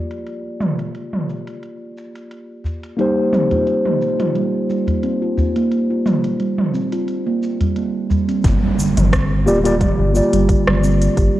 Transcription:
0.00 2.94 A#3 medium
0.00 2.95 F4 medium
0.00 2.96 G4 medium
0.00 2.96 D5 medium
0.11 closed hi-hat soft
0.11 shaker soft
0.27 closed hi-hat soft
0.27 shaker soft
0.60 mid tom medium
0.60 shaker medium
0.79 closed hi-hat soft
0.79 shaker soft
0.95 closed hi-hat soft
0.95 shaker soft
1.13 mid tom soft
1.29 shaker medium
1.47 closed hi-hat soft
1.47 shaker soft
1.63 closed hi-hat soft
1.63 shaker soft
1.97 shaker medium
2.15 closed hi-hat soft
2.15 shaker soft
2.31 closed hi-hat soft
2.31 shaker soft
2.64 udu medium
2.64 shaker medium
2.83 closed hi-hat soft
2.83 shaker soft
2.97 3.16 G3 medium
2.97 8.40 A#3 medium
2.97 8.40 D#4 medium
2.97 8.41 G4 medium
2.97 closed hi-hat soft
2.97 shaker soft
3.01 8.42 C5 medium
3.33 3.50 C4 medium
3.33 mid tom medium
3.33 shaker medium
3.51 3.84 F4 medium
3.51 closed hi-hat soft
3.51 udu medium
3.51 shaker soft
3.67 closed hi-hat soft
3.67 shaker soft
3.85 4.00 A#3 medium
3.85 mid tom soft
4.02 shaker medium
4.20 4.35 F4 medium
4.20 closed hi-hat soft
4.20 mid tom soft
4.20 shaker soft
4.35 4.53 G3 medium
4.35 closed hi-hat soft
4.35 shaker soft
4.69 4.87 G3 medium
4.69 shaker medium
4.87 closed hi-hat soft
4.87 udu medium
4.87 shaker soft
5.03 5.20 C4 medium
5.03 closed hi-hat soft
5.03 shaker soft
5.22 5.54 F4 medium
5.38 udu medium
5.38 shaker medium
5.56 5.71 A#3 medium
5.56 closed hi-hat soft
5.56 shaker soft
5.71 closed hi-hat soft
5.71 shaker soft
5.90 6.05 F4 medium
6.06 6.23 G3 medium
6.06 mid tom medium
6.06 shaker medium
6.24 closed hi-hat soft
6.24 shaker soft
6.40 6.58 G3 medium
6.40 closed hi-hat soft
6.40 shaker soft
6.58 mid tom medium
6.74 6.91 C4 medium
6.74 shaker medium
6.92 7.25 F4 medium
6.92 closed hi-hat soft
6.92 shaker soft
7.08 closed hi-hat soft
7.08 shaker soft
7.26 7.41 A#3 medium
7.43 shaker medium
7.60 7.75 G3 medium
7.60 closed hi-hat soft
7.60 udu medium
7.60 shaker soft
7.76 7.93 A#3 medium
7.76 closed hi-hat soft
7.76 shaker soft
8.10 8.28 G3 medium
8.10 udu medium
8.10 shaker medium
8.29 8.44 C4 medium
8.29 closed hi-hat medium
8.29 shaker soft
8.44 8.57 G1 medium
8.44 kick loud
8.44 closed hi-hat soft
8.44 impact medium
8.44 shaker soft
8.63 8.77 G3 loud
8.78 8.96 D3 medium
8.78 shaker medium
8.97 9.48 G1 loud
8.97 closed hi-hat medium
8.97 mid tom medium
8.97 shaker soft
9.12 9.45 C4 medium
9.12 kick loud
9.12 cross-stick medium
9.12 closed hi-hat soft
9.12 shaker soft
9.46 9.89 D1 medium
9.46 9.57 A#3 medium
9.46 9.57 F4 medium
9.46 9.57 G4 medium
9.46 9.58 G4 medium
9.46 9.58 D5 loud
9.46 shaker medium
9.64 9.97 G3 medium
9.64 9.74 A#3 loud
9.64 9.74 F4 loud
9.64 9.74 G4 medium
9.64 9.75 D5 loud
9.64 closed hi-hat medium
9.64 shaker soft
9.81 kick loud
9.81 closed hi-hat soft
9.81 mid tom medium
9.81 shaker soft
9.99 10.21 G1 medium
9.99 10.08 G4 medium
10.13 11.40 A#3 medium
10.13 11.40 F4 medium
10.13 11.40 G4 medium
10.13 11.40 D5 medium
10.13 shaker medium
10.33 10.55 G1 medium
10.33 10.47 G3 loud
10.33 closed hi-hat medium
10.33 shaker soft
10.49 10.67 D3 medium
10.49 kick loud
10.49 closed hi-hat soft
10.49 shaker soft
10.68 11.09 G1 medium
10.68 cross-stick medium
10.68 mid tom medium
10.83 11.16 C4 medium
10.83 shaker medium
11.02 closed hi-hat medium
11.02 shaker soft
11.17 11.30 G1 medium
11.17 11.28 G4 medium
11.17 kick loud
11.17 closed hi-hat soft
11.17 shaker soft
11.35 11.40 G3 medium

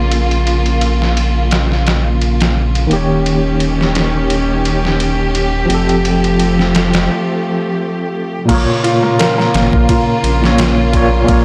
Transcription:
0.00 2.88 A#1 medium
0.00 2.84 A#2 medium
0.00 2.87 C#3 medium
0.00 2.86 A#3 medium
0.00 2.87 A#3 medium
0.00 2.87 F4 medium
0.00 2.89 C#5 medium
0.11 ride medium
0.31 ride soft
0.47 ride medium
0.66 ride soft
0.81 ride medium
1.02 snare soft
1.17 ride medium
1.51 snare medium
1.51 ride medium
1.72 snare soft
1.87 snare medium
1.87 ride medium
2.21 ride medium
2.41 snare medium
2.41 ride medium
2.75 ride medium
2.87 5.64 D#3 medium
2.87 5.66 A#3 medium
2.87 ride medium
2.91 5.67 D#1 medium
2.91 5.67 D#3 medium
2.91 5.67 C#4 medium
2.91 8.45 G4 medium
2.91 5.67 G4 medium
2.96 5.69 C#5 medium
3.26 ride medium
3.60 ride medium
3.81 snare soft
3.95 snare medium
3.95 ride medium
4.30 ride medium
4.65 ride medium
4.85 snare soft
5.00 ride medium
5.35 ride medium
5.66 7.07 F3 medium
5.66 7.09 C4 medium
5.70 7.09 F1 medium
5.70 8.46 F3 medium
5.70 8.46 A3 medium
5.70 7.10 G4 medium
5.70 ride medium
5.74 7.12 A4 medium
5.89 ride soft
6.05 ride medium
6.24 ride soft
6.39 ride medium
6.59 snare soft
6.75 snare medium
6.75 ride medium
6.93 snare medium
6.93 ride medium
8.45 8.66 A#1 loud
8.45 10.36 A#2 medium
8.45 11.45 C#3 medium
8.45 10.37 A#3 medium
8.45 8.60 A#3 medium
8.45 11.45 F4 medium
8.45 kick loud
8.45 crash medium
8.45 ride medium
8.50 11.45 A#3 medium
8.50 10.39 F4 medium
8.54 10.41 C#5 loud
8.84 9.01 F4 loud
8.84 ride medium
9.03 9.12 A#3 medium
9.19 9.36 A#4 medium
9.19 snare loud
9.19 ride medium
9.38 9.53 A#3 loud
9.38 snare soft
9.54 9.71 G#1 loud
9.54 snare medium
9.54 ride medium
9.73 9.87 A#1 loud
9.73 kick medium
9.89 10.00 F4 medium
9.89 kick loud
9.89 ride medium
10.24 11.25 A#1 medium
10.24 ride medium
10.42 10.89 A#2 medium
10.42 10.90 A#3 medium
10.42 10.90 F4 medium
10.42 snare soft
10.46 10.91 C#5 loud
10.58 snare loud
10.58 ride medium
10.92 11.16 A#2 medium
10.92 11.17 A#3 medium
10.92 11.18 F4 medium
10.92 kick medium
10.92 ride medium
10.97 11.19 C#5 medium
11.24 11.45 A#2 medium
11.24 11.45 A#3 medium
11.28 11.45 A#1 loud
11.28 11.39 A#3 medium
11.28 11.45 F4 medium
11.28 kick loud
11.28 ride medium
11.33 11.45 C#5 loud

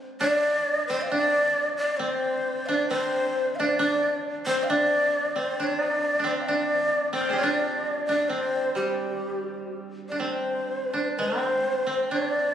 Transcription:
0.00 0.89 C4 medium
0.00 0.20 D4 medium
0.21 1.11 D4 medium
0.21 0.85 D5 medium
0.87 1.99 C4 medium
0.87 1.03 C5 medium
1.02 1.13 F5 medium
1.11 2.68 D4 medium
1.11 1.76 D5 loud
1.77 1.99 D5 medium
1.98 2.90 C4 medium
1.98 2.68 C5 medium
2.66 3.59 D4 medium
2.66 2.88 D5 medium
2.66 2.71 F5 medium
2.89 4.46 C4 medium
2.89 3.57 C5 medium
3.55 3.60 F5 medium
3.59 3.79 D4 medium
3.59 3.78 D5 medium
3.78 4.69 D4 medium
3.78 4.16 D5 medium
4.46 5.35 C4 medium
4.46 4.65 C5 loud
4.63 4.72 F5 medium
4.70 5.59 D4 medium
4.70 5.39 D5 loud
5.36 6.23 C4 medium
5.36 5.65 C5 medium
5.60 6.19 D4 medium
5.60 5.75 C#5 medium
5.75 6.29 D5 medium
6.19 6.48 D4 soft
6.24 7.12 C4 medium
6.24 6.43 C5 medium
6.41 6.48 F5 medium
6.47 7.43 D4 medium
6.47 7.13 D5 medium
7.13 8.29 C4 medium
7.13 7.34 C5 medium
7.13 7.36 G5 soft
7.20 8.65 F5 soft
7.25 8.85 D5 soft
7.29 8.81 G#4 soft
7.29 9.00 C5 soft
7.33 9.37 G4 soft
7.37 9.57 F4 medium
7.37 8.01 D5 medium
7.43 8.08 D4 medium
8.06 10.11 D4 medium
8.06 8.30 D5 medium
8.28 10.19 C4 medium
8.28 8.74 C5 medium
8.75 11.84 G3 soft
8.75 9.79 G4 medium
10.09 10.93 D4 soft
10.09 10.21 D5 soft
10.19 11.18 C4 soft
10.19 11.15 C5 medium
10.93 12.11 D4 medium
11.17 11.86 C4 medium
11.17 11.28 B4 medium
11.28 12.12 C5 medium
11.87 12.54 C4 medium
12.10 12.54 D4 medium
12.10 12.54 D5 medium

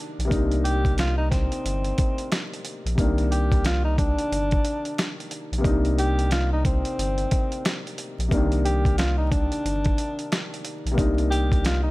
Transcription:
0.00 0.23 C3 medium
0.00 0.30 D#3 medium
0.00 0.26 A#3 medium
0.00 0.28 D4 medium
0.19 0.29 A#1 medium
0.19 closed hi-hat medium
0.25 2.91 C3 medium
0.25 2.92 A#3 medium
0.30 1.48 C2 loud
0.30 2.93 D4 medium
0.30 2.95 D#4 medium
0.30 kick loud
0.30 closed hi-hat medium
0.52 closed hi-hat soft
0.64 0.94 G4 medium
0.64 closed hi-hat medium
0.85 kick medium
0.85 closed hi-hat soft
0.98 1.17 F4 medium
0.98 snare loud
0.98 closed hi-hat medium
1.17 1.29 D#4 medium
1.30 2.47 C4 medium
1.30 kick medium
1.30 snare soft
1.30 closed hi-hat medium
1.52 closed hi-hat medium
1.65 1.92 G1 loud
1.65 closed hi-hat loud
1.84 closed hi-hat soft
1.98 kick medium
1.98 closed hi-hat medium
2.18 closed hi-hat soft
2.32 snare loud
2.32 closed hi-hat loud
2.54 closed hi-hat soft
2.65 closed hi-hat medium
2.85 2.96 A#1 loud
2.85 closed hi-hat medium
2.95 4.14 C2 loud
2.95 5.57 C3 medium
2.95 5.59 A#3 medium
2.95 kick loud
2.95 closed hi-hat medium
3.00 5.63 D#3 medium
3.00 5.62 D4 medium
3.18 closed hi-hat soft
3.31 3.61 G4 medium
3.31 closed hi-hat medium
3.52 kick medium
3.52 closed hi-hat soft
3.65 3.84 F4 medium
3.65 snare loud
3.65 closed hi-hat medium
3.85 3.96 D#4 medium
3.98 5.14 D4 medium
3.98 kick medium
3.98 closed hi-hat medium
4.19 closed hi-hat medium
4.31 4.59 G1 medium
4.31 closed hi-hat loud
4.51 kick medium
4.51 closed hi-hat soft
4.65 closed hi-hat medium
4.85 closed hi-hat soft
4.98 snare loud
4.98 closed hi-hat loud
5.20 closed hi-hat soft
5.31 closed hi-hat medium
5.52 5.62 A#1 medium
5.52 closed hi-hat medium
5.58 8.24 C3 medium
5.58 8.25 A#3 medium
5.64 6.81 C2 loud
5.64 8.27 D4 medium
5.64 8.28 D#4 medium
5.64 kick loud
5.64 closed hi-hat medium
5.85 closed hi-hat soft
5.99 6.28 G4 medium
5.99 closed hi-hat medium
6.19 closed hi-hat soft
6.31 6.50 F4 medium
6.31 snare loud
6.31 closed hi-hat medium
6.53 6.64 D#4 medium
6.65 7.81 C4 medium
6.65 kick medium
6.65 closed hi-hat medium
6.85 closed hi-hat medium
6.98 7.26 G1 loud
6.98 closed hi-hat loud
7.18 closed hi-hat soft
7.31 kick medium
7.31 closed hi-hat medium
7.52 closed hi-hat soft
7.65 snare loud
7.65 closed hi-hat loud
7.87 closed hi-hat soft
7.98 closed hi-hat medium
8.19 8.29 A#1 loud
8.19 closed hi-hat medium
8.28 9.48 C2 loud
8.28 10.90 C3 medium
8.28 10.93 A#3 medium
8.28 kick loud
8.28 closed hi-hat medium
8.34 10.96 D#3 medium
8.34 10.95 D4 medium
8.52 closed hi-hat soft
8.65 8.95 G4 medium
8.65 closed hi-hat medium
8.85 kick medium
8.85 closed hi-hat soft
8.98 9.16 F4 medium
8.98 snare loud
8.98 closed hi-hat medium
9.18 9.29 D#4 medium
9.31 10.47 D4 medium
9.31 kick loud
9.31 closed hi-hat medium
9.52 closed hi-hat medium
9.65 9.92 G1 loud
9.65 closed hi-hat medium
9.85 kick medium
9.85 closed hi-hat soft
9.98 closed hi-hat medium
10.19 closed hi-hat soft
10.32 snare loud
10.32 closed hi-hat loud
10.54 closed hi-hat soft
10.65 closed hi-hat medium
10.85 10.96 A#1 medium
10.85 closed hi-hat medium
10.91 11.91 C3 medium
10.91 11.91 A#3 medium
10.97 11.91 C2 loud
10.97 11.91 D4 medium
10.97 11.91 D#4 medium
10.97 kick loud
10.97 closed hi-hat medium
11.18 closed hi-hat soft
11.31 11.61 G4 medium
11.31 closed hi-hat medium
11.52 kick medium
11.52 closed hi-hat soft
11.65 11.83 F4 medium
11.65 snare loud
11.65 closed hi-hat medium
11.83 11.91 D#4 medium

